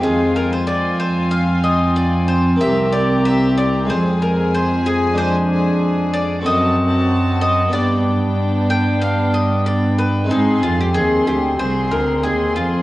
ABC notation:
X:1
M:4/4
L:1/16
Q:1/4=93
K:Fdor
V:1 name="Violin section"
a16 | b8 a8- | [K:Gphr] a8 =a8 | g16 |
c'4 c'4 c'4 c'4 |]
V:2 name="Mandolin"
A2 B c d2 c2 f2 e2 d2 c2 | _f2 d2 f2 d2 c2 B2 c2 A2 | [K:Gphr] c6 d2 ^d6 d2 | d6 g2 f2 e2 d2 =B2 |
E2 F G A2 G2 c2 B2 A2 F2 |]
V:3 name="Violin section"
F16 | G8 A8- | [K:Gphr] A8 ^F8 | D16 |
A4 A4 A4 A4 |]
V:4 name="Viola section"
C16- | C16 | [K:Gphr] D8 C8 | =B,16 |
C4 C4 C4 C4 |]
V:5 name="Harpsichord"
[A,CF]16 | [B,CG]8 [A,CA]8 | [K:Gphr] [A,DA]8 [C=A]8 | [=B,DG]16 |
[A,CE]2 z12 z2 |]
V:6 name="Harpsichord" clef=bass
F,,16 | C,,8 F,,8- | [K:Gphr] F,,8 ^F,,8 | G,,16 |
A,,2 F,,2 E,,2 D,,2 C,,2 D,,2 E,,2 F,,2 |]
V:7 name="Cello section" clef=bass
F,,16 | C,,8 F,,8- | [K:Gphr] F,,8 ^F,,8 | G,,16 |
A,,2 F,,2 E,,2 D,,2 C,,2 D,,2 E,,2 F,,2 |]